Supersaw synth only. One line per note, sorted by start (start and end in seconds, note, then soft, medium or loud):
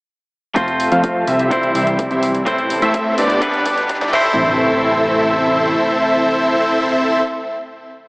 0.56 0.70 C4 medium
0.56 0.70 F4 medium
0.56 0.70 A4 medium
0.56 0.70 C5 medium
0.56 0.70 F5 medium
0.92 1.25 C4 medium
0.92 1.25 F4 medium
0.92 1.25 A4 medium
0.92 1.25 C5 medium
0.92 1.25 F5 loud
1.28 1.72 C4 loud
1.28 1.72 E4 medium
1.28 1.72 G4 medium
1.28 1.72 C5 medium
1.28 1.72 E5 loud
1.75 1.89 C4 medium
1.75 1.89 E4 medium
1.75 1.89 G4 medium
1.75 1.89 C5 medium
1.75 1.89 E5 medium
2.11 2.25 C4 medium
2.11 2.24 E4 medium
2.11 2.24 G4 medium
2.11 2.25 C5 medium
2.11 2.24 E5 medium
2.47 2.60 C4 medium
2.47 2.60 E4 medium
2.47 2.60 A4 medium
2.47 2.60 C5 medium
2.47 2.60 E5 medium
2.82 3.15 C4 medium
2.82 3.15 E4 medium
2.82 3.15 A4 medium
2.82 3.15 C5 medium
2.82 3.15 E5 loud
3.18 3.63 B3 loud
3.18 3.63 D4 medium
3.18 3.63 G4 medium
3.18 3.63 B4 medium
3.18 3.63 D5 loud
3.66 3.79 B3 medium
3.66 3.79 D4 medium
3.66 3.79 G4 medium
3.66 3.79 B4 medium
3.66 3.79 D5 medium
4.01 4.13 B3 medium
4.01 4.13 D4 medium
4.01 4.13 G4 medium
4.01 4.13 B4 medium
4.01 4.13 D5 medium
4.13 7.20 C4 medium
4.13 7.20 E4 medium
4.13 7.20 A4 medium
4.13 7.20 C5 medium
4.13 7.20 E5 medium